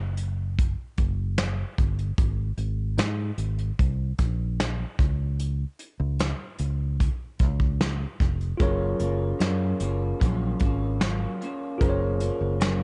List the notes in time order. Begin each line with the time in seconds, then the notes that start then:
Already playing: F#1
0.17 closed hi-hat
0.59 kick, closed hi-hat
0.98 F#1, kick, closed hi-hat
1.38 snare, closed hi-hat
1.78 G1, kick, closed hi-hat
1.99 closed hi-hat
2.18 G#1, kick, closed hi-hat
2.57 G#1, closed hi-hat
2.98 G#2, snare, closed hi-hat
3.38 G#1, closed hi-hat
3.58 closed hi-hat
3.79 C2, kick, closed hi-hat
4.18 A#1, kick, closed hi-hat
4.60 snare, closed hi-hat
4.99 C#2, kick, snare, closed hi-hat
5.39 closed hi-hat
5.79 closed hi-hat
6.00 C#2
6.19 snare, closed hi-hat
6.58 C#2, closed hi-hat
7.00 kick, closed hi-hat
7.39 C#2, kick, closed hi-hat
7.60 kick
7.81 snare, closed hi-hat
8.20 F1, kick, snare, closed hi-hat
8.41 closed hi-hat
8.57 F#1 F#3 A#3 C#4 F4 G#4 A#4, kick, closed hi-hat
8.62 F4 C#5
8.99 F#1 A#3 C#4 F4, closed hi-hat
9.39 F#2 F#3 A#3 C#4 F4, snare, closed hi-hat
9.80 F#1 A#3 C#4 F4, closed hi-hat
10.20 A#1 F#3 A#3 C#4 F4, kick, closed hi-hat
10.59 G#1 C#4 F4, kick, closed hi-hat
10.64 A#3
11.00 F#3 A#3 C#4 F4, snare, closed hi-hat
11.41 A#3 C#4 F4, closed hi-hat
11.78 F#1 F#3 F4 G#4 A#4, kick, closed hi-hat
11.82 A#3 C#4 F4 C5
11.89 C#5
12.20 A#3 C#4 F4, closed hi-hat
12.41 F#1
12.60 F#3 A#3 C#4 F4, snare, closed hi-hat